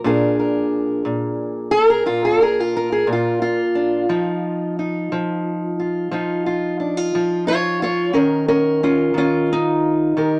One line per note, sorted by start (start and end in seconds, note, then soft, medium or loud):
0.00 4.08 F3 soft
0.04 1.04 A#2 medium
0.04 3.74 D4 medium
0.04 1.89 G#4 medium
0.04 0.38 A#4 medium
0.39 1.70 A#4 soft
1.05 2.05 A#2 medium
1.71 1.89 A4 loud
1.89 2.06 G#4 medium
1.89 2.22 A#4 loud
2.06 3.06 A#2 medium
2.06 2.40 F4 medium
2.25 2.42 A4 medium
2.42 2.60 G#4 medium
2.42 2.74 A#4 medium
2.60 2.92 F4 medium
2.77 3.59 A#4 medium
2.92 3.08 G#4 medium
3.07 4.04 A#2 medium
3.13 3.41 F4 medium
3.42 5.78 F4 medium
3.75 4.05 D4 soft
4.09 5.10 F3 medium
4.09 4.78 D#4 soft
4.79 6.12 D#4 soft
5.12 6.10 F3 medium
5.80 6.12 F4 soft
6.11 7.13 F3 medium
6.11 8.11 D#4 soft
6.11 6.45 F4 soft
6.46 6.79 F4 soft
6.80 6.97 D4 soft
6.97 7.46 F4 soft
7.15 8.11 F3 medium
7.47 7.80 F4 medium
7.47 7.81 C#5 medium
7.82 8.14 F4 medium
7.82 8.16 C#5 medium
8.13 9.13 D#3 medium
8.13 8.47 C#4 medium
8.13 8.47 A#4 medium
8.48 8.82 C#4 medium
8.48 9.49 A#4 medium
8.83 9.16 C#4 medium
8.83 9.16 F4 medium
9.14 10.16 D#3 medium
9.14 9.50 C#4 medium
9.14 10.17 F4 medium
9.53 10.40 D#4 medium
10.17 10.40 D#3 medium
10.17 10.40 G4 soft
10.17 10.40 A#4 soft